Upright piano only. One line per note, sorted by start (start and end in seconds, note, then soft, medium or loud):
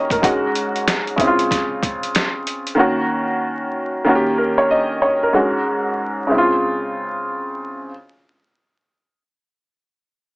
0.00 0.20 D#3 medium
0.00 0.20 A#3 medium
0.00 0.21 C#4 medium
0.00 0.25 G4 medium
0.00 0.12 A#4 medium
0.00 0.25 C#5 medium
0.00 0.25 D#5 medium
0.12 0.42 A#4 medium
0.22 1.18 G#2 medium
0.22 1.16 G#3 medium
0.22 1.19 C#4 medium
0.22 1.19 F#4 medium
1.16 2.74 C#3 medium
1.16 2.75 G#3 medium
1.16 2.75 C4 medium
1.21 1.28 E4 medium
1.27 2.80 F4 medium
2.75 4.02 D#3 medium
2.75 4.03 A#3 medium
2.75 4.03 C#4 medium
2.79 4.04 F#4 medium
4.05 5.30 D#3 medium
4.05 5.31 A#3 medium
4.05 5.32 C#4 medium
4.09 4.16 F#4 medium
4.15 5.36 G4 medium
4.38 4.57 A#4 medium
4.58 4.70 C#5 medium
4.71 5.01 D#5 medium
5.02 5.20 C#5 medium
5.23 5.53 A#4 medium
5.33 6.29 G#2 medium
5.33 6.27 G#3 medium
5.33 6.30 C#4 medium
5.33 6.30 F#4 medium
6.27 7.85 C#3 medium
6.27 7.85 G#3 medium
6.27 7.86 C4 medium
6.31 6.38 E4 medium
6.38 7.90 F4 medium